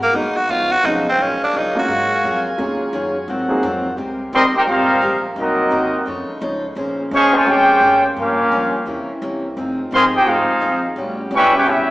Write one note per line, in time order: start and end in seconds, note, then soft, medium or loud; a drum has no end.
0.00 0.13 G#1 medium
0.00 0.17 A#3 loud
0.00 0.49 B3 medium
0.00 0.49 G#4 medium
0.00 0.49 A#4 medium
0.00 0.49 F#5 medium
0.13 0.48 A#1 loud
0.13 0.33 F#3 medium
0.13 0.37 G#3 medium
0.13 0.34 G#3 medium
0.13 0.34 A#3 medium
0.13 0.34 B3 medium
0.13 0.38 B3 medium
0.13 0.34 D#4 medium
0.13 0.38 D#4 medium
0.13 0.38 F#4 medium
0.13 0.38 A#4 medium
0.37 0.52 F#4 loud
0.49 0.83 C#2 loud
0.49 0.72 C#3 soft
0.49 0.73 F3 medium
0.49 0.73 B3 medium
0.49 1.18 D#4 medium
0.49 0.73 D#4 medium
0.49 0.73 F4 loud
0.49 1.18 B4 medium
0.49 1.18 C#5 medium
0.49 3.26 F5 medium
0.72 0.87 F#4 loud
0.83 1.18 B1 loud
0.83 1.07 C#3 medium
0.83 1.04 F3 medium
0.83 1.07 F3 medium
0.83 1.04 G#3 medium
0.83 1.04 B3 medium
0.83 1.08 B3 medium
0.83 1.04 C#4 medium
0.83 1.04 D#4 medium
0.83 1.08 D#4 medium
0.83 1.07 D#4 loud
1.09 1.24 C4 loud
1.18 1.39 A#1 loud
1.18 1.42 F#3 soft
1.18 1.43 A#3 medium
1.18 1.43 F4 medium
1.18 3.26 G#4 medium
1.18 2.57 A#4 medium
1.18 3.26 G#5 medium
1.22 1.43 C#4 medium
1.22 1.44 G#4 medium
1.40 1.59 D4 loud
1.40 muted upright bass stroke soft
1.53 1.74 C#2 medium
1.53 1.78 F#3 medium
1.53 1.78 A#3 medium
1.53 1.77 D#4 loud
1.53 1.78 F4 medium
1.53 1.78 G#4 medium
1.75 1.87 F#3 medium
1.75 1.87 G#3 medium
1.75 1.87 A#3 medium
1.75 1.87 C#4 medium
1.75 1.88 F4 loud
1.75 muted upright bass stroke soft
1.79 2.56 F#4 loud
1.88 2.22 G#2 loud
1.88 2.12 F#3 medium
1.88 2.12 A#3 medium
1.88 2.13 F4 medium
1.88 2.13 G#4 medium
2.23 2.58 F2 loud
2.23 2.47 F#3 medium
2.23 2.47 A#3 medium
2.23 2.47 F4 medium
2.23 2.48 G#4 medium
2.58 2.92 D#2 loud
2.58 2.82 D#3 medium
2.58 3.10 F#3 medium
2.58 3.11 G#3 medium
2.58 3.11 A#3 medium
2.58 3.11 C#4 medium
2.58 2.82 C#4 medium
2.58 3.11 F4 medium
2.58 2.83 F#4 medium
2.58 2.83 G#4 medium
2.58 3.28 C#5 medium
2.93 3.27 F#2 medium
2.93 3.16 D#3 medium
2.93 3.17 C#4 medium
2.93 3.17 F#4 medium
2.93 3.17 G#4 medium
3.28 3.51 G#2 medium
3.28 3.48 G#2 loud
3.28 3.97 F3 medium
3.28 3.52 F#3 medium
3.28 3.52 C4 medium
3.28 3.52 F4 medium
3.28 3.97 A#4 medium
3.28 3.97 C5 medium
3.28 3.98 F#5 medium
3.48 3.61 F#3 medium
3.48 3.62 A#3 medium
3.48 3.61 C4 medium
3.48 3.62 D#4 medium
3.48 3.62 G#4 medium
3.48 muted upright bass stroke soft
3.62 3.97 F2 loud
3.62 3.86 G#2 medium
3.62 3.86 F#3 medium
3.62 3.87 C4 medium
3.62 3.87 F4 medium
3.97 4.32 C2 medium
3.97 6.05 C3 medium
3.97 5.19 G3 medium
3.97 4.21 G#3 medium
3.97 6.05 A#3 medium
3.97 4.21 C4 medium
3.97 5.19 G4 medium
3.97 4.22 G4 medium
3.97 4.22 A#4 medium
4.33 4.53 A#1 loud
4.33 4.43 D#3 medium
4.33 4.43 G3 loud
4.33 4.56 G#3 medium
4.33 4.56 C4 medium
4.33 4.43 C4 medium
4.33 4.56 G4 medium
4.33 4.57 A#4 medium
4.33 4.44 A#4 loud
4.33 4.44 D#5 medium
4.33 4.44 G5 medium
4.33 4.44 C6 loud
4.54 4.61 C4 medium
4.54 4.61 D#4 medium
4.54 4.63 D#4 medium
4.54 4.61 G4 medium
4.54 4.63 A#4 medium
4.54 4.63 C5 medium
4.54 4.62 G5 medium
4.54 muted upright bass stroke soft
4.67 5.02 G#1 medium
4.67 5.20 G3 medium
4.67 4.90 G#3 soft
4.67 5.20 C4 medium
4.67 4.91 C4 medium
4.67 5.22 D#4 medium
4.67 5.20 F4 medium
4.67 4.91 G4 medium
4.67 4.92 A#4 medium
4.67 5.22 A#4 medium
4.67 5.22 C5 medium
4.67 5.22 F5 loud
5.01 5.35 A#1 loud
5.01 5.25 G#3 medium
5.01 5.25 C4 medium
5.01 5.26 G4 medium
5.01 5.26 A#4 medium
5.36 5.71 C2 medium
5.36 5.60 C3 soft
5.36 6.06 F#3 medium
5.36 6.03 F#3 medium
5.36 5.60 A#3 medium
5.36 6.03 A#3 medium
5.36 6.05 C4 medium
5.36 6.75 D#4 medium
5.36 6.03 D#4 medium
5.36 5.61 D#4 medium
5.36 5.61 F#4 medium
5.36 6.04 F#4 medium
5.40 6.05 A#4 medium
5.40 6.05 D#5 medium
5.70 6.06 D#2 medium
5.70 5.94 C3 medium
5.70 5.95 A#3 medium
5.70 5.95 D#4 medium
5.70 5.95 F#4 medium
6.05 6.28 F2 medium
6.05 6.76 C#3 medium
6.05 6.30 F3 medium
6.05 6.76 F3 medium
6.05 6.76 A3 medium
6.05 6.30 D#4 medium
6.05 6.30 A4 medium
6.05 6.31 C#5 medium
6.29 muted upright bass stroke soft
6.41 6.76 C#2 loud
6.41 6.65 F3 medium
6.41 6.65 D#4 medium
6.41 6.65 A4 medium
6.41 6.65 C#5 medium
6.75 7.11 A#1 loud
6.75 8.15 C#3 medium
6.75 8.16 G#3 medium
6.75 6.99 A#3 medium
6.75 9.54 A#3 medium
6.75 7.00 C#4 medium
6.75 8.15 C#4 medium
6.75 7.01 G#4 medium
6.75 7.01 C5 medium
7.11 7.46 D#2 loud
7.11 7.32 F3 loud
7.11 7.32 G#3 loud
7.11 7.36 A#3 medium
7.11 7.33 C#4 loud
7.11 7.36 C#4 medium
7.11 7.36 G#4 medium
7.11 7.34 G#4 loud
7.11 7.36 C5 medium
7.11 7.34 C5 loud
7.11 7.34 F5 loud
7.11 7.34 C#6 loud
7.33 7.47 C#3 medium
7.33 7.47 F3 medium
7.33 7.46 G#3 medium
7.33 7.48 F4 medium
7.33 7.48 C5 medium
7.33 7.48 C#5 medium
7.33 7.48 G#5 loud
7.46 7.80 F2 medium
7.46 8.04 G#3 medium
7.46 7.70 A#3 soft
7.46 8.04 C#4 medium
7.46 7.71 C#4 medium
7.46 8.05 F4 medium
7.46 8.04 G4 medium
7.46 7.71 G#4 medium
7.46 7.71 C5 medium
7.46 8.05 C5 loud
7.46 8.05 C#5 medium
7.46 8.05 G5 loud
7.81 8.15 G#2 medium
7.81 8.05 A#3 medium
7.81 8.05 C#4 medium
7.81 8.05 G#4 medium
7.81 8.06 C5 medium
8.16 8.40 G2 medium
8.16 8.51 G2 medium
8.16 8.40 F3 medium
8.16 8.86 G3 medium
8.16 8.41 A#3 medium
8.16 8.84 A#3 medium
8.16 9.55 C#4 medium
8.16 8.41 C#4 medium
8.16 8.84 C#4 medium
8.16 8.86 F4 medium
8.16 8.84 F4 medium
8.16 8.84 G4 medium
8.16 8.84 A#4 medium
8.16 8.84 F5 medium
8.52 8.72 F2 loud
8.52 8.75 G2 medium
8.52 8.75 F3 medium
8.52 8.76 A#3 medium
8.52 8.76 C#4 medium
8.73 muted upright bass stroke soft
8.86 9.07 E2 medium
8.86 9.09 C3 medium
8.86 9.10 E3 medium
8.86 9.10 A#3 medium
8.86 10.94 C4 medium
8.86 9.10 C#4 medium
8.86 9.56 E4 medium
9.08 muted upright bass stroke soft
9.21 9.56 C2 medium
9.21 9.45 C3 medium
9.21 9.45 E3 medium
9.21 9.45 A#3 medium
9.21 9.45 C#4 medium
9.57 9.91 F1 medium
9.57 10.95 D#3 medium
9.57 9.80 F3 medium
9.57 10.96 G#3 medium
9.57 9.80 C4 medium
9.57 9.81 D#4 medium
9.57 10.95 F4 medium
9.57 9.81 G#4 medium
9.91 10.26 G1 loud
9.91 10.03 D#3 loud
9.91 10.14 F3 medium
9.91 10.03 G#3 loud
9.91 10.15 C4 medium
9.91 10.03 C4 medium
9.91 10.15 D#4 medium
9.91 10.15 G#4 medium
9.91 10.04 G#4 loud
9.91 10.04 C6 loud
9.95 10.04 D#5 medium
9.95 10.04 F5 loud
10.14 10.27 D#4 medium
10.14 10.26 G4 medium
10.14 10.27 G#4 medium
10.14 10.27 C5 medium
10.14 10.27 G5 medium
10.26 10.47 G#1 loud
10.26 10.50 F3 soft
10.26 10.83 G#3 medium
10.26 10.83 C4 medium
10.26 10.50 C4 medium
10.26 10.50 D#4 soft
10.26 10.84 D#4 medium
10.26 10.83 F4 medium
10.26 10.84 G#4 medium
10.26 10.51 G#4 medium
10.26 10.84 C5 medium
10.26 10.84 F5 medium
10.48 muted upright bass stroke soft
10.60 10.95 A#1 loud
10.60 10.84 F3 medium
10.60 10.85 C4 medium
10.60 10.85 D#4 medium
10.60 10.85 G#4 medium
10.96 11.30 A1 medium
10.96 11.19 A2 medium
10.96 11.90 C#3 medium
10.96 11.90 G3 medium
10.96 11.20 G3 medium
10.96 11.90 B3 medium
10.96 11.20 C#4 medium
10.96 11.21 F#4 medium
10.96 11.90 G4 medium
11.31 11.65 C#2 loud
11.31 11.54 A2 medium
11.31 11.53 E3 loud
11.31 11.54 G3 medium
11.31 11.53 G3 medium
11.31 11.55 C#4 medium
11.31 11.53 C#4 loud
11.31 11.55 F#4 medium
11.35 11.54 B4 loud
11.35 11.54 E5 loud
11.35 11.54 G5 loud
11.35 11.54 C#6 loud
11.55 11.66 C#4 medium
11.55 11.66 E4 medium
11.55 11.68 E4 medium
11.55 11.66 G4 medium
11.55 11.68 B4 medium
11.55 11.68 C#5 medium
11.55 11.67 G5 loud
11.66 11.90 E2 loud
11.66 11.89 A2 soft
11.66 11.90 G3 medium
11.66 11.90 C#4 medium
11.66 11.90 E4 medium
11.66 11.90 F#4 medium
11.66 11.90 G4 medium
11.66 11.90 B4 medium
11.66 11.90 E5 medium